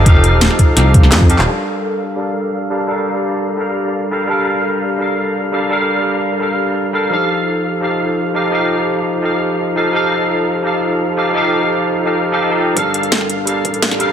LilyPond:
<<
  \new Staff \with { instrumentName = "Tine electric piano" } { \time 4/4 \key g \minor \tempo 4 = 170 <f ees' g' a' f''>2 <f ees' g' a' f''>4. <f ees' g' a' f''>8 | <g d' a' bes' f''>2 <g d' a' bes' f''>4. <g d' a' bes' f''>8 | <g d' a' bes' f''>2 <g d' a' bes' f''>4. <g d' a' bes' f''>8 | <g d' a' bes' f''>2 <g d' a' bes' f''>4. <g d' a' bes' f''>8 |
<g d' a' bes' f''>2 <g d' a' bes' f''>4. <g d' a' bes' f''>8 | <f ees' g' a' f''>2 <f ees' g' a' f''>4. <f ees' g' a' f''>8 | <f ees' g' a' f''>2 <f ees' g' a' f''>4. <f ees' g' a' f''>8 | <f ees' g' a' f''>2 <f ees' g' a' f''>4. <f ees' g' a' f''>8 |
<f ees' g' a' f''>2 <f ees' g' a' f''>8. <f ees' g' a' f''>8 <f ees' g' a' a''>16 <f ees' g' a' g''>8 | <g d' a' bes' f''>2 <g d' a' bes' f''>4. <g d' a' bes' f''>8 | }
  \new Staff \with { instrumentName = "Analog synth bass" } { \clef bass \time 4/4 \key g \minor f,,8. ees,,8 r8. c,4 f,8. ees,,16 | r1 | r1 | r1 |
r1 | r1 | r1 | r1 |
r1 | g,,2~ g,,8 a,,4. | }
  \new DrumStaff \with { instrumentName = "Drums" } \drummode { \time 4/4 <hh bd>8 hh8 <hh sn>16 sn16 <hh bd>8 <hh sn>8 <hh bd>16 sn16 <hc hh sn>16 bd16 hh16 hc16 | r4 r4 r4 r4 | r4 r4 r4 r4 | r4 r4 r4 r4 |
r4 r4 r4 r4 | r4 r4 r4 r4 | r4 r4 r4 r4 | r4 r4 r4 r4 |
r4 r4 r4 r4 | <hh bd>8 hh16 hh16 <hh sn>16 sn16 hh8 hh8 <hh bd>16 hh16 <hh sn>16 <hh sn>16 hh8 | }
>>